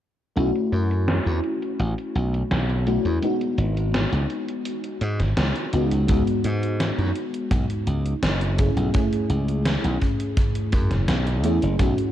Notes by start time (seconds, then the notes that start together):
0.36 B1 A3 C#4 E4 F#4, closed hi-hat
0.56 closed hi-hat
0.72 F#2, closed hi-hat
0.91 closed hi-hat
1.08 snare, closed hi-hat
1.26 E2, closed hi-hat
1.44 closed hi-hat
1.62 closed hi-hat
1.79 A1, closed hi-hat
1.98 closed hi-hat
2.15 B1, closed hi-hat
2.34 closed hi-hat
2.51 B1, snare, closed hi-hat
2.69 closed hi-hat
2.86 A3 C#4 E4 F#4, closed hi-hat
3.05 E2, closed hi-hat
3.22 G#3 B3 D#4 F#4, closed hi-hat
3.41 closed hi-hat
3.58 G#1, closed hi-hat
3.77 closed hi-hat
3.94 snare, closed hi-hat
4.12 C#2, closed hi-hat
4.30 closed hi-hat
4.49 closed hi-hat
4.65 closed hi-hat
4.84 closed hi-hat
5.01 G#2, closed hi-hat
5.20 G#1, snare, closed hi-hat
5.37 C#2, snare, closed hi-hat
5.56 closed hi-hat
5.73 C#2 G#3 B3 D#4 F#4, closed hi-hat
5.91 C#2, closed hi-hat
6.07 C#2 G#3 B3 D#4 F#4, kick, closed hi-hat
6.27 closed hi-hat
6.44 G#2, closed hi-hat
6.63 closed hi-hat
6.80 snare, closed hi-hat
6.98 F#2, closed hi-hat
7.15 closed hi-hat
7.34 closed hi-hat
7.51 B1, kick, closed hi-hat
7.70 closed hi-hat
7.87 C#2, closed hi-hat
8.06 closed hi-hat
8.22 F#1, snare, closed hi-hat
8.41 closed hi-hat
8.58 A3 C#4 E4 G#4, kick, closed hi-hat
8.77 B1, closed hi-hat
8.93 A3 C#4 E4 G#4, kick, closed hi-hat
9.13 closed hi-hat
9.30 C#2, closed hi-hat
9.49 closed hi-hat
9.66 snare, closed hi-hat
9.84 B1, closed hi-hat
10.02 kick, closed hi-hat
10.20 closed hi-hat
10.37 kick, closed hi-hat
10.55 closed hi-hat
10.73 F#2, kick, closed hi-hat
10.91 F#1, snare, closed hi-hat
11.08 B1, snare, closed hi-hat
11.27 closed hi-hat
11.43 E2 A3 C#4 E4 G#4, closed hi-hat
11.62 F#1, closed hi-hat
11.79 B1 A3 C#4 E4 F#4, kick, closed hi-hat
11.98 closed hi-hat